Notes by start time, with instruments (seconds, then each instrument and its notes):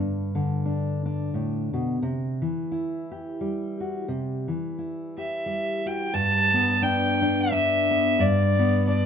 Already playing: steel-string acoustic guitar G2 D3
0.35 steel-string acoustic guitar D3
0.65 steel-string acoustic guitar D4
1.06 steel-string acoustic guitar D4
1.34 steel-string acoustic guitar A2
1.73 steel-string acoustic guitar B2
2.02 steel-string acoustic guitar C3
2.42 steel-string acoustic guitar E3
2.72 steel-string acoustic guitar E4
3.11 steel-string acoustic guitar G4
3.41 steel-string acoustic guitar G3
3.80 steel-string acoustic guitar F#4
4.08 steel-string acoustic guitar C3
4.48 steel-string acoustic guitar E3
4.78 steel-string acoustic guitar E4
5.17 steel-string acoustic guitar G4, fiddle E5
5.46 steel-string acoustic guitar G3
5.86 steel-string acoustic guitar F#4, fiddle G5
6.14 steel-string acoustic guitar G2, fiddle A5
6.54 steel-string acoustic guitar B3
6.82 steel-string acoustic guitar D4, fiddle G5
7.22 steel-string acoustic guitar D4
7.52 steel-string acoustic guitar D4, fiddle E5
7.91 steel-string acoustic guitar B3
8.19 steel-string acoustic guitar G2, fiddle D5
8.59 steel-string acoustic guitar B3
8.87 steel-string acoustic guitar D4, fiddle D5